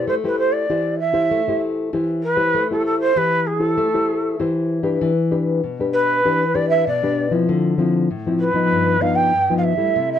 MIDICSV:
0, 0, Header, 1, 3, 480
1, 0, Start_track
1, 0, Key_signature, 0, "minor"
1, 0, Tempo, 617284
1, 58, Time_signature, 4, 2, 24, 8
1, 3904, Key_signature, 1, "minor"
1, 7925, End_track
2, 0, Start_track
2, 0, Title_t, "Shakuhachi"
2, 0, Program_c, 0, 77
2, 65, Note_on_c, 0, 72, 94
2, 111, Note_off_c, 0, 72, 0
2, 200, Note_on_c, 0, 71, 78
2, 295, Note_off_c, 0, 71, 0
2, 299, Note_on_c, 0, 72, 90
2, 406, Note_on_c, 0, 74, 81
2, 417, Note_off_c, 0, 72, 0
2, 767, Note_off_c, 0, 74, 0
2, 772, Note_on_c, 0, 76, 90
2, 1226, Note_off_c, 0, 76, 0
2, 1734, Note_on_c, 0, 71, 89
2, 2073, Note_off_c, 0, 71, 0
2, 2115, Note_on_c, 0, 69, 84
2, 2209, Note_off_c, 0, 69, 0
2, 2213, Note_on_c, 0, 69, 86
2, 2324, Note_off_c, 0, 69, 0
2, 2329, Note_on_c, 0, 72, 101
2, 2464, Note_on_c, 0, 71, 102
2, 2476, Note_off_c, 0, 72, 0
2, 2694, Note_on_c, 0, 68, 85
2, 2706, Note_off_c, 0, 71, 0
2, 2826, Note_off_c, 0, 68, 0
2, 2826, Note_on_c, 0, 69, 85
2, 3419, Note_off_c, 0, 69, 0
2, 4612, Note_on_c, 0, 71, 86
2, 5091, Note_on_c, 0, 74, 91
2, 5103, Note_off_c, 0, 71, 0
2, 5199, Note_off_c, 0, 74, 0
2, 5204, Note_on_c, 0, 76, 100
2, 5325, Note_off_c, 0, 76, 0
2, 5345, Note_on_c, 0, 74, 92
2, 5679, Note_off_c, 0, 74, 0
2, 6529, Note_on_c, 0, 71, 93
2, 7009, Note_on_c, 0, 77, 100
2, 7021, Note_off_c, 0, 71, 0
2, 7118, Note_on_c, 0, 79, 103
2, 7130, Note_off_c, 0, 77, 0
2, 7434, Note_off_c, 0, 79, 0
2, 7444, Note_on_c, 0, 77, 72
2, 7492, Note_on_c, 0, 76, 98
2, 7503, Note_off_c, 0, 77, 0
2, 7855, Note_off_c, 0, 76, 0
2, 7871, Note_on_c, 0, 76, 96
2, 7925, Note_off_c, 0, 76, 0
2, 7925, End_track
3, 0, Start_track
3, 0, Title_t, "Nylon-string guitar"
3, 0, Program_c, 1, 24
3, 0, Note_on_c, 1, 64, 58
3, 0, Note_on_c, 1, 67, 64
3, 0, Note_on_c, 1, 72, 63
3, 58, Note_on_c, 1, 57, 69
3, 129, Note_off_c, 1, 64, 0
3, 131, Note_off_c, 1, 67, 0
3, 132, Note_off_c, 1, 72, 0
3, 185, Note_on_c, 1, 64, 67
3, 190, Note_on_c, 1, 67, 69
3, 194, Note_on_c, 1, 72, 73
3, 504, Note_off_c, 1, 64, 0
3, 506, Note_off_c, 1, 67, 0
3, 508, Note_off_c, 1, 72, 0
3, 515, Note_off_c, 1, 57, 0
3, 542, Note_on_c, 1, 52, 75
3, 543, Note_on_c, 1, 64, 61
3, 546, Note_on_c, 1, 67, 61
3, 548, Note_on_c, 1, 72, 61
3, 766, Note_off_c, 1, 64, 0
3, 767, Note_off_c, 1, 67, 0
3, 769, Note_off_c, 1, 72, 0
3, 880, Note_on_c, 1, 64, 60
3, 883, Note_on_c, 1, 67, 64
3, 886, Note_on_c, 1, 72, 68
3, 998, Note_off_c, 1, 52, 0
3, 1021, Note_on_c, 1, 57, 64
3, 1092, Note_off_c, 1, 64, 0
3, 1093, Note_off_c, 1, 67, 0
3, 1095, Note_off_c, 1, 72, 0
3, 1149, Note_on_c, 1, 64, 74
3, 1155, Note_on_c, 1, 67, 65
3, 1156, Note_on_c, 1, 72, 69
3, 1467, Note_off_c, 1, 64, 0
3, 1469, Note_off_c, 1, 67, 0
3, 1471, Note_off_c, 1, 72, 0
3, 1477, Note_off_c, 1, 57, 0
3, 1498, Note_on_c, 1, 52, 76
3, 1501, Note_on_c, 1, 64, 61
3, 1503, Note_on_c, 1, 67, 55
3, 1509, Note_on_c, 1, 72, 60
3, 1726, Note_off_c, 1, 64, 0
3, 1728, Note_off_c, 1, 67, 0
3, 1729, Note_off_c, 1, 72, 0
3, 1837, Note_on_c, 1, 64, 57
3, 1841, Note_on_c, 1, 67, 58
3, 1841, Note_on_c, 1, 72, 70
3, 1957, Note_off_c, 1, 52, 0
3, 1977, Note_on_c, 1, 57, 67
3, 2052, Note_off_c, 1, 64, 0
3, 2052, Note_off_c, 1, 67, 0
3, 2053, Note_off_c, 1, 72, 0
3, 2104, Note_on_c, 1, 64, 59
3, 2108, Note_on_c, 1, 67, 65
3, 2111, Note_on_c, 1, 72, 58
3, 2425, Note_off_c, 1, 64, 0
3, 2427, Note_off_c, 1, 67, 0
3, 2429, Note_off_c, 1, 72, 0
3, 2436, Note_off_c, 1, 57, 0
3, 2456, Note_on_c, 1, 52, 72
3, 2459, Note_on_c, 1, 64, 60
3, 2465, Note_on_c, 1, 67, 63
3, 2782, Note_off_c, 1, 64, 0
3, 2783, Note_off_c, 1, 67, 0
3, 2797, Note_on_c, 1, 64, 59
3, 2800, Note_on_c, 1, 67, 57
3, 2803, Note_on_c, 1, 72, 68
3, 2917, Note_off_c, 1, 52, 0
3, 2935, Note_on_c, 1, 57, 70
3, 3012, Note_off_c, 1, 64, 0
3, 3013, Note_off_c, 1, 67, 0
3, 3015, Note_off_c, 1, 72, 0
3, 3064, Note_on_c, 1, 64, 57
3, 3067, Note_on_c, 1, 67, 63
3, 3072, Note_on_c, 1, 72, 73
3, 3386, Note_off_c, 1, 64, 0
3, 3387, Note_off_c, 1, 67, 0
3, 3389, Note_off_c, 1, 72, 0
3, 3396, Note_off_c, 1, 57, 0
3, 3417, Note_on_c, 1, 52, 70
3, 3419, Note_on_c, 1, 64, 60
3, 3420, Note_on_c, 1, 67, 57
3, 3426, Note_on_c, 1, 72, 57
3, 3742, Note_off_c, 1, 64, 0
3, 3744, Note_off_c, 1, 67, 0
3, 3745, Note_off_c, 1, 72, 0
3, 3755, Note_on_c, 1, 62, 59
3, 3758, Note_on_c, 1, 67, 60
3, 3763, Note_on_c, 1, 71, 59
3, 3877, Note_off_c, 1, 52, 0
3, 3898, Note_on_c, 1, 52, 74
3, 3971, Note_off_c, 1, 62, 0
3, 3972, Note_off_c, 1, 67, 0
3, 3975, Note_off_c, 1, 71, 0
3, 4130, Note_on_c, 1, 62, 53
3, 4134, Note_on_c, 1, 67, 59
3, 4137, Note_on_c, 1, 71, 59
3, 4357, Note_off_c, 1, 52, 0
3, 4362, Note_off_c, 1, 62, 0
3, 4363, Note_off_c, 1, 67, 0
3, 4366, Note_off_c, 1, 71, 0
3, 4382, Note_on_c, 1, 47, 71
3, 4508, Note_on_c, 1, 62, 56
3, 4513, Note_on_c, 1, 67, 55
3, 4516, Note_on_c, 1, 71, 60
3, 4828, Note_off_c, 1, 62, 0
3, 4829, Note_off_c, 1, 67, 0
3, 4831, Note_off_c, 1, 71, 0
3, 4839, Note_off_c, 1, 47, 0
3, 4858, Note_on_c, 1, 52, 68
3, 4861, Note_on_c, 1, 62, 59
3, 4865, Note_on_c, 1, 67, 53
3, 4867, Note_on_c, 1, 71, 59
3, 5003, Note_off_c, 1, 62, 0
3, 5004, Note_off_c, 1, 67, 0
3, 5006, Note_off_c, 1, 71, 0
3, 5088, Note_on_c, 1, 62, 61
3, 5094, Note_on_c, 1, 71, 64
3, 5095, Note_on_c, 1, 67, 60
3, 5317, Note_off_c, 1, 52, 0
3, 5321, Note_off_c, 1, 62, 0
3, 5323, Note_off_c, 1, 67, 0
3, 5324, Note_off_c, 1, 71, 0
3, 5342, Note_on_c, 1, 47, 71
3, 5467, Note_on_c, 1, 62, 66
3, 5472, Note_on_c, 1, 67, 67
3, 5476, Note_on_c, 1, 71, 70
3, 5667, Note_off_c, 1, 62, 0
3, 5669, Note_off_c, 1, 67, 0
3, 5670, Note_off_c, 1, 71, 0
3, 5685, Note_on_c, 1, 53, 68
3, 5688, Note_on_c, 1, 60, 62
3, 5690, Note_on_c, 1, 64, 75
3, 5798, Note_off_c, 1, 47, 0
3, 5821, Note_on_c, 1, 50, 75
3, 6015, Note_off_c, 1, 53, 0
3, 6015, Note_off_c, 1, 60, 0
3, 6018, Note_off_c, 1, 64, 0
3, 6051, Note_on_c, 1, 53, 66
3, 6055, Note_on_c, 1, 60, 57
3, 6060, Note_on_c, 1, 64, 65
3, 6277, Note_off_c, 1, 50, 0
3, 6281, Note_off_c, 1, 53, 0
3, 6284, Note_off_c, 1, 60, 0
3, 6286, Note_off_c, 1, 64, 0
3, 6304, Note_on_c, 1, 45, 76
3, 6428, Note_on_c, 1, 53, 58
3, 6434, Note_on_c, 1, 60, 53
3, 6437, Note_on_c, 1, 64, 62
3, 6627, Note_off_c, 1, 53, 0
3, 6628, Note_off_c, 1, 60, 0
3, 6631, Note_off_c, 1, 64, 0
3, 6641, Note_on_c, 1, 53, 61
3, 6644, Note_on_c, 1, 59, 67
3, 6648, Note_on_c, 1, 63, 78
3, 6758, Note_off_c, 1, 45, 0
3, 6784, Note_on_c, 1, 43, 67
3, 6972, Note_off_c, 1, 53, 0
3, 6973, Note_off_c, 1, 59, 0
3, 6976, Note_off_c, 1, 63, 0
3, 7007, Note_on_c, 1, 53, 59
3, 7012, Note_on_c, 1, 59, 65
3, 7015, Note_on_c, 1, 63, 72
3, 7238, Note_off_c, 1, 43, 0
3, 7239, Note_off_c, 1, 53, 0
3, 7241, Note_off_c, 1, 59, 0
3, 7243, Note_off_c, 1, 63, 0
3, 7260, Note_on_c, 1, 43, 70
3, 7386, Note_on_c, 1, 53, 65
3, 7388, Note_on_c, 1, 59, 68
3, 7395, Note_on_c, 1, 63, 67
3, 7584, Note_off_c, 1, 53, 0
3, 7586, Note_off_c, 1, 59, 0
3, 7588, Note_off_c, 1, 63, 0
3, 7599, Note_on_c, 1, 55, 64
3, 7602, Note_on_c, 1, 57, 55
3, 7606, Note_on_c, 1, 64, 67
3, 7715, Note_off_c, 1, 43, 0
3, 7743, Note_on_c, 1, 48, 72
3, 7925, Note_off_c, 1, 48, 0
3, 7925, Note_off_c, 1, 55, 0
3, 7925, Note_off_c, 1, 57, 0
3, 7925, Note_off_c, 1, 64, 0
3, 7925, End_track
0, 0, End_of_file